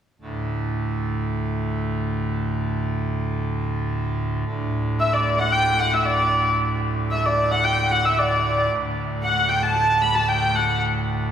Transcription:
0.21 D2 A2
4.46 D2 A2
5.00 E5
5.13 D5
5.39 F#5
5.52 G5
5.79 F#5
5.93 E5
6.05 D5
7.11 E5
7.25 D5
7.52 F#5
7.64 G5
7.91 F#5
8.05 E5
8.19 D5
8.70 D2 A2
9.24 F#5
9.49 G5
9.63 A5
9.75 A5
10.02 B5
10.15 A5
10.28 G5
10.55 F#5

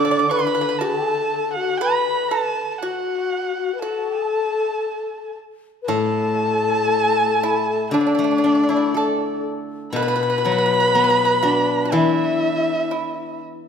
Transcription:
Already playing: D3 E3 D5 D6
0.05 D5
0.11 D5
0.19 D5
0.30 B4 B5
0.39 B4
0.47 B4
0.55 B4
0.61 B4
0.69 B4
0.79 F#4 G#4 A5
0.96 A4
1.11 A4
1.54 F#4 F#5
1.78 B4 B5
2.28 A4 A5
2.71 A5
2.78 F#4 F#5
2.83 F#4
3.57 F#4
3.75 B4
3.79 F#4 A4 A5
4.06 G4
4.18 G#4
4.30 A4
5.82 B4
5.88 A2 A4 A5
7.43 E4
7.91 D3 D4 D5
8.01 D4
8.07 D4
8.15 A3 D4
8.24 D4
8.31 D4
8.38 D4
8.44 D4
8.55 D4
8.63 D4
8.69 D4 E4
8.77 D4
8.94 A4
9.93 B2 B4 B5
10.02 B4
10.08 B4
10.16 B4
10.23 B4
10.30 B4
10.38 B4
10.45 F#3 B4
10.52 B4
10.58 B4
10.66 B4
10.74 B4
10.80 B4
10.88 B4
10.95 B3 B4
11.04 B4
11.10 B4
11.19 B4
11.25 B4
11.43 D4 F#4
11.85 F#4
11.92 E3 E4 E5
12.91 E4

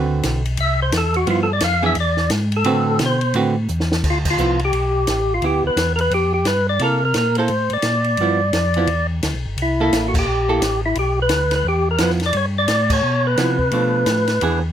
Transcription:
Already playing: D2 D3 C4 F#4 B4
0.23 B1, snare, hi-hat pedal, ride
0.45 ride
0.57 C2 E5, ride
0.82 C5
0.92 E2, snare, hi-hat pedal, ride
0.97 A4
1.14 F#4, ride
1.27 G2 F3 B3 E4 F4, ride
1.43 A4
1.53 D5
1.60 F2 F5, snare, hi-hat pedal, ride
1.82 E3 B3 D4 G#4 E5
1.95 E2, ride
2.00 D5
2.17 snare
2.30 G#2, snare, hi-hat pedal, ride
2.52 ride
2.56 A4
2.64 A2 D3 C4 F#4 B4, ride
2.99 B2, snare, hi-hat pedal, ride
3.06 C5
3.21 ride
3.34 A2 D3 C4 F#4 B4, ride
3.68 E2, hi-hat pedal
3.80 snare
3.92 snare
4.04 D2, kick, crash
4.10 F4
4.25 kick, crash
4.30 F4
4.38 C2 F3 B3 E4, hi-hat pedal
4.59 ride
4.65 G4
4.73 B1, ride
5.07 A1, snare, hi-hat pedal, ride
5.34 F4
5.42 D2 B3 E4 G4, ride
5.64 D2 B4
5.76 E2, snare, hi-hat pedal, ride
5.96 A#4, ride
6.01 B4
6.11 F2 G4, ride
6.34 G4
6.45 G2 B4, snare, hi-hat pedal, ride
6.69 D5
6.79 C3 A#3 E4 A4, ride
6.84 A#4
7.05 A#4
7.14 A#2 A#4, snare, hi-hat pedal, ride
7.35 A#3 E4 C5, ride
7.39 A4
7.48 A2, ride
7.70 A2 D5, ride
7.82 A#2, snare, hi-hat pedal, ride
8.04 ride
8.17 G2 F3, ride
8.21 B3 E4
8.53 F2, snare, hi-hat pedal, ride
8.74 F3 B3 E4, ride
8.87 E2, ride
9.23 D2, snare, hi-hat pedal, ride
9.35 B1
9.45 G1
9.57 C2, ride
9.62 E4
9.80 A#3 E4 A4
9.91 A1, snare, hi-hat pedal, ride
10.08 F#4
10.14 kick, crash
10.19 G4
10.26 A#1
10.49 A#3 E4 A4
10.60 A1, snare, hi-hat pedal, ride
10.86 E4
10.95 B1 G4, ride
11.22 B4
11.29 D2, snare, hi-hat pedal, ride
11.51 snare, ride
11.56 B4
11.64 E2 G4
11.91 A#4
11.98 F2 F3 B3 E4, snare, hi-hat pedal, ride
12.03 B4
12.10 snare
12.20 snare, ride
12.26 D5
12.33 G2 C#5, ride
12.58 D5
12.68 A2, snare, hi-hat pedal, ride
12.90 C#5, kick, crash
13.03 B2
13.27 B4
13.37 C3 F3 B3 E4, snare, hi-hat pedal, ride
13.59 kick
13.71 B2 F3 A3 D4, ride
14.06 A2, snare, hi-hat pedal, ride
14.28 snare, ride
14.41 E2 E3 B3 D4 G#4, ride

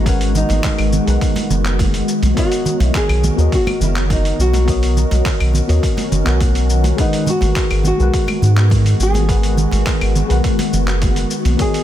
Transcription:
Already playing: G#1 D#3 G#3 B3 F#4 G#4 A#4 B4 F#5
0.00 G#3 D#4
0.05 C#4 G#4 A#4 B4, kick, open hi-hat, cabasa
0.09 F#5
0.21 open hi-hat, cabasa
0.35 D#4, low conga, cabasa
0.49 G#1, open hi-hat, high conga, cabasa
0.64 kick, clap, open hi-hat, cabasa
0.78 G#1, open hi-hat, claves
0.93 low conga, cabasa
1.05 B1 G#3 G#4 A#4 B4, open hi-hat, cabasa
1.10 F#5
1.21 kick, open hi-hat, cabasa
1.36 open hi-hat, high conga, cabasa
1.50 F#1, low conga, cabasa
1.65 clap, cabasa
1.79 kick, open hi-hat, high conga, cabasa
1.94 open hi-hat, cabasa
2.08 D#3 F#4 A#4, cabasa
2.22 B1, open hi-hat, high conga, cabasa
2.34 B3 F#4 A#4, kick, open hi-hat, cabasa
2.38 F#4 C#5 D#5
2.52 open hi-hat, cabasa
2.65 low conga, cabasa
2.80 B1 E4, open hi-hat, high conga, cabasa
2.95 G#4, kick, clap, open hi-hat, cabasa
3.09 B1, open hi-hat, claves
3.23 high conga, low conga, cabasa
3.36 D#2 B3 F#4 A#4 C#5, cabasa
3.41 D#5
3.52 F#4, kick, open hi-hat, cabasa
3.67 open hi-hat, high conga, claves
3.81 F#1 E4, low conga, cabasa
3.96 clap, cabasa
4.10 D#4, kick, open hi-hat, high conga, cabasa
4.25 open hi-hat, cabasa
4.39 B1 C#4 F#4, cabasa
4.53 open hi-hat, high conga, cabasa
4.65 B3 F#4 A#4 C#5, kick, open hi-hat, cabasa
4.70 D#5
4.83 open hi-hat, cabasa
4.97 low conga, cabasa
5.11 B1, open hi-hat, high conga, cabasa
5.26 kick, clap, open hi-hat, cabasa
5.40 B1, open hi-hat, claves
5.54 low conga, cabasa
5.68 D#2 B3 F#4 A#4 C#5 D#5, open hi-hat, cabasa
5.83 kick, open hi-hat, cabasa
5.97 open hi-hat, high conga, cabasa
6.12 F#1, low conga, cabasa
6.24 B1 B3 F#4 A#4 C#5, clap, cabasa
6.29 F#5
6.41 kick, open hi-hat, high conga, cabasa
6.55 open hi-hat, cabasa
6.70 cabasa
6.84 open hi-hat, high conga, cabasa
6.96 G#3 B3 G#4 A#4 B4, kick, open hi-hat, cabasa
7.00 D#4 F#5
7.13 open hi-hat, cabasa
7.26 F#4, low conga, cabasa
7.41 G#1, open hi-hat, high conga, cabasa
7.56 kick, clap, open hi-hat, cabasa
7.71 G#1, open hi-hat, claves
7.84 F#4, high conga, low conga, cabasa
7.97 B1 G#3 G#4 A#4 B4, cabasa
8.03 F#5
8.14 kick, open hi-hat, cabasa
8.28 open hi-hat, high conga, claves
8.42 G#2, low conga, cabasa
8.57 clap, cabasa
8.70 kick, open hi-hat, high conga, cabasa
8.86 open hi-hat, cabasa
9.00 G#1 G#4, cabasa
9.14 open hi-hat, high conga, cabasa
9.26 G#3 G#4 A#4 B4, kick, open hi-hat, cabasa
9.31 F#5
9.43 open hi-hat, cabasa
9.57 low conga, cabasa
9.71 G#1, open hi-hat, high conga, cabasa
9.86 kick, clap, open hi-hat, cabasa
10.01 G#1, open hi-hat, claves
10.15 low conga, cabasa
10.27 B1 G#3 G#4 A#4 B4, open hi-hat, cabasa
10.32 F#5
10.44 kick, open hi-hat, cabasa
10.59 open hi-hat, high conga, cabasa
10.73 F#1, low conga, cabasa
10.87 clap, cabasa
11.02 kick, open hi-hat, high conga, cabasa
11.16 open hi-hat, cabasa
11.31 A#4, cabasa
11.45 B1, open hi-hat, high conga, cabasa
11.56 B3 F#4 A#4 C#5, kick, open hi-hat, cabasa
11.61 G#4 D#5
11.74 open hi-hat, cabasa

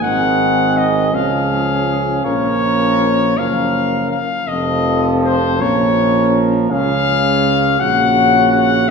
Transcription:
0.01 G#1 D#3 C4 G#4 F#5
0.77 D#5
1.14 C#2 F3 C#4 G#4 F5
2.25 A#1 F3 C#4 A#4 C#5
3.37 F#1 F3 C#4 A#4 F5
4.11 F5
4.47 F1 F3 C4 A4 D#5
5.23 C5
5.60 A#1 F3 C#4 A#4 C#5
6.71 C#2 C#3 C#4 G#4 F5
7.80 A#1 C#3 C#4 F#4 F#5
8.52 F#5

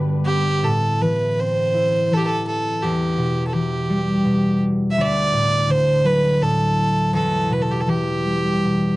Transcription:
Already playing: G1 G2 D3 G3 B3 D4 G4 B4
0.24 B3 G4
0.63 A2 A4
1.01 E3 B4
1.39 C4 C5
1.74 E4
2.11 E3 A4
2.16 G4
2.25 A4
2.47 A4
2.82 E2 G4
3.18 B2
3.47 A4
3.53 E3 G4
3.90 G3
4.25 B2
4.91 E5
4.98 D2 D5
5.33 A2
5.68 D3 C5
6.04 F#3 B4
6.41 A2 A4
7.13 E2 A4
7.50 B2 B4
7.62 A4
7.71 G4
7.81 A4
7.87 E3 G4
8.25 G3
8.65 B2

